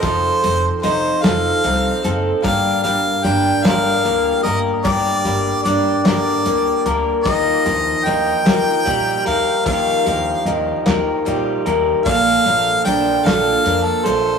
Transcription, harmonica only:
\new Staff \with { instrumentName = "Harmonica" } { \time 6/8 \key g \minor \tempo 4. = 50 c''4 c''8 f''4 r8 | f''8 f''8 g''8 f''4 ees''8 | d''4 d''8 d''4 r8 | ees''4 g''4. f''8 |
f''4 r2 | f''4 g''8 f''8. a'16 c''8 | }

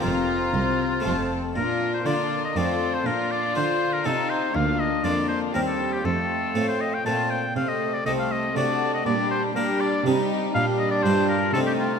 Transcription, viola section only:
\new Staff \with { instrumentName = "Viola section" } { \time 3/4 \key bes \major \tempo 4 = 120 c'2 c'8 r8 | d'4 d'4 c'4 | d'2 c'4 | bes4 bes4 g4 |
a2 a8 r8 | \key g \minor a4 a4 a4 | g4 g4 g4 | g2 a4 | }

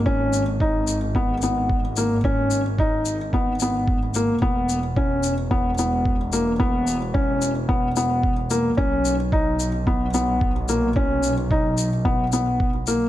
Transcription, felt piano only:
\new Staff \with { instrumentName = "Felt piano" } { \time 4/4 \key gis \minor \tempo 4 = 110 cis'4 dis'4 b8 b4 ais8 | cis'4 dis'4 b8 b4 ais8 | b4 cis'4 b8 b4 ais8 | b4 cis'4 b8 b4 ais8 |
cis'4 dis'4 b8 b4 ais8 | cis'4 dis'4 b8 b4 ais8 | }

